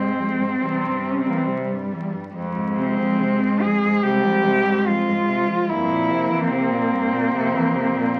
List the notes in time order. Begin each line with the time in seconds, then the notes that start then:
Already playing: G#2 G#3 C4
0.17 F2
0.40 G#2
0.61 E2 C3 G3
0.84 G2
1.06 C3
1.11 C#4
1.20 C4
1.27 E3 A#3
1.37 C4
1.48 C3
1.70 G2
1.92 E2
2.13 G2
2.34 F2 G#3
2.56 G#2
2.78 C3 C4
2.99 F3
3.21 C3
3.42 G#2
3.61 F2 G#4
3.84 G#2
4.03 C2 C3 G4
4.25 F3
4.46 C3
4.66 G#2
4.87 F2 F4
5.08 G#2
5.29 C3
5.49 F3
5.69 F2 G2 A#3 E4
5.90 A#2
6.11 C3
6.31 E3
6.51 C3 C4
6.71 A#2
6.92 G2
7.13 A#2
7.34 F2 C3
7.55 E3
7.75 C3
7.95 A#2
8.16 G2